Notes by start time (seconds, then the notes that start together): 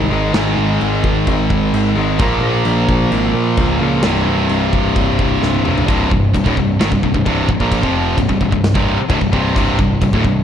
Already playing: G#2 D#3 G#3
0.10 G#1 G#2 D#3 G#3
0.33 G#1 G#2 D#3 G#3, snare, china
0.57 G#1
0.81 G#1, china
1.03 G#1, kick
1.27 G#1, kick, china
1.50 kick
1.73 G#1, china
1.96 G#1 G#2 D#3 G#3
2.19 A#1 A#2 F3 A#3, kick, china
2.41 A#1
2.65 A#1, china
2.88 A#1, kick
3.11 G#1, china
3.34 A#2
3.57 C#2, kick, china
3.80 C#2 A#2 F3 A#3
4.03 C1 C2 G2 C3, snare, china
4.27 C1
4.49 C1, china
4.73 C1, kick
4.95 C1, kick, china
5.19 kick
5.41 C1, snare
5.54 high tom
5.63 C1 C2 G2 C3, mid tom
5.78 floor tom
5.88 C1 C2 G2 C3, kick, crash
6.11 C1 C2 G2, kick
6.34 C1 C2 G2, kick, crash
6.46 D1 D2 A2, kick
6.57 C1 C2 G2, kick
6.80 G#1 G#2 D#3, snare, crash
6.92 C1 C2 G2, kick
7.03 C1 C2 G2, kick
7.14 C1 C2 G2, kick
7.25 C1 C2 G2 C3, kick, crash
7.48 C1 C2 G2, kick
7.60 A#1 A#2 F3 A#3, kick
7.72 kick, crash
7.83 F1 F2 C3 F3, kick
8.17 C1 C2 G2, kick, crash
8.29 C1 C2 G2, kick
8.41 C1 C2 G2, kick
8.52 C1 C2 G2, kick
8.64 snare, crash
8.75 C1 C2 G2 C3, kick
8.99 muted picked electric bass stroke, muted distorted electric guitar stroke
9.09 D1 D2 A2, kick, crash
9.21 C1 C2 G2, kick
9.32 C1 C2 G2 C3, kick
9.56 C1 C2 G2 C3, kick, crash
9.79 C1 C2 G2, kick
10.01 C1 C2 G2, kick, crash
10.12 D1 D2 A2, kick
10.24 C1 C2 G2, kick